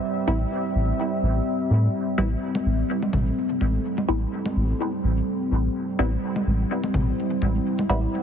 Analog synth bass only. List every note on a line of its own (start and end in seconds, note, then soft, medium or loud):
0.28 0.45 A1 medium
0.75 0.92 A1 medium
1.23 1.40 A1 loud
1.70 1.88 A2 medium
2.18 2.35 A1 loud
2.66 2.83 A1 loud
3.13 3.30 A1 loud
3.61 3.78 A1 medium
4.08 4.26 A1 loud
4.56 4.73 A1 loud
5.04 5.21 A1 loud
5.51 5.69 A1 loud
5.99 6.16 A1 loud
6.47 6.64 A1 loud
6.94 7.11 A1 medium
7.42 7.59 A1 medium
7.89 8.07 A1 loud